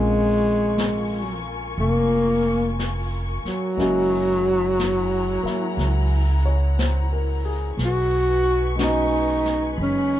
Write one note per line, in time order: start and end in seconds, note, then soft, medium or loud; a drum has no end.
0.00 1.73 A#1 medium
0.00 1.41 G#3 medium
0.00 3.75 G#3 soft
0.00 3.77 A#3 soft
0.00 3.79 C4 soft
0.00 3.78 C#4 soft
0.00 3.74 F4 medium
0.00 3.80 F4 soft
0.00 3.80 A4 soft
0.00 3.75 A#4 medium
0.00 3.74 G#5 medium
0.00 3.74 C#6 medium
0.78 brush sweep soft
0.78 snare soft
0.78 hi-hat pedal soft
1.78 3.40 F1 medium
1.78 2.75 A#3 medium
1.78 brush sweep soft
2.79 brush sweep soft
2.79 snare soft
2.79 hi-hat pedal soft
3.44 6.42 F#3 medium
3.44 muted upright bass stroke soft
3.44 snare soft
3.77 5.40 F#1 medium
3.77 7.77 G#3 soft
3.77 5.41 A#3 soft
3.77 7.79 C#4 soft
3.77 7.74 E4 medium
3.77 5.44 E4 soft
3.77 7.74 G#4 medium
3.77 7.74 F#5 medium
3.77 7.74 A#5 medium
3.77 brush sweep soft
3.77 snare soft
3.82 7.80 F#4 soft
4.79 brush sweep soft
4.79 snare soft
4.79 hi-hat pedal soft
5.43 7.78 A#3 soft
5.43 7.79 E4 soft
5.43 muted upright bass stroke soft
5.43 snare soft
5.77 7.74 C#2 medium
5.77 brush sweep soft
5.77 snare soft
6.45 6.97 C#5 soft
6.79 7.40 C5 soft
6.79 brush sweep soft
6.79 snare soft
6.79 hi-hat pedal soft
7.13 7.63 A#4 soft
7.45 7.96 G#4 soft
7.77 9.73 B1 medium
7.77 10.20 D#4 medium
7.77 10.20 B4 medium
7.77 10.20 G#5 medium
7.77 9.76 C#6 medium
7.77 brush sweep soft
7.77 snare soft
7.85 8.77 F#4 medium
8.76 10.20 G#3 soft
8.76 10.20 B3 soft
8.76 10.20 C#4 soft
8.76 10.20 D#4 soft
8.76 brush sweep soft
8.76 snare soft
8.76 hi-hat pedal soft
8.80 9.76 D#4 medium
8.80 10.20 F#4 soft
9.46 snare soft
9.76 10.20 F#1 medium
9.76 10.20 B5 medium
9.76 brush sweep soft
9.83 10.20 C#4 medium